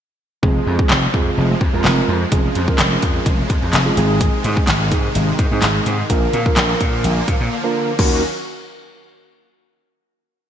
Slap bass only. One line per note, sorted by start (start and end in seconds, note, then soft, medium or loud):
0.43 0.58 F1 loud
0.67 0.82 F2 loud
0.90 1.06 F1 loud
1.14 1.29 F2 loud
1.38 1.53 F1 loud
1.61 1.69 F2 loud
1.74 1.81 F2 loud
1.85 2.00 F1 loud
2.08 2.24 F2 loud
2.32 2.47 F1 loud
2.56 2.71 F2 loud
2.79 2.95 F1 loud
3.03 3.18 F2 medium
3.26 3.41 F1 loud
3.50 3.58 F2 loud
3.62 3.70 F2 medium
3.73 3.89 F1 loud
3.97 4.28 G#1 loud
4.44 4.60 G#2 loud
4.68 4.93 G#1 medium
4.92 5.07 G#2 loud
5.15 5.31 G#1 loud
5.39 5.47 G#2 loud
5.51 5.59 G#2 loud
5.63 5.78 G#1 loud
5.86 6.02 G#2 loud
6.10 6.25 A#1 loud
6.33 6.49 A#2 loud
6.57 6.72 A#1 medium
6.81 7.06 A#2 loud
7.04 7.20 A#1 loud
7.28 7.36 A#2 loud
7.41 7.48 A#2 loud
7.99 8.21 D#2 loud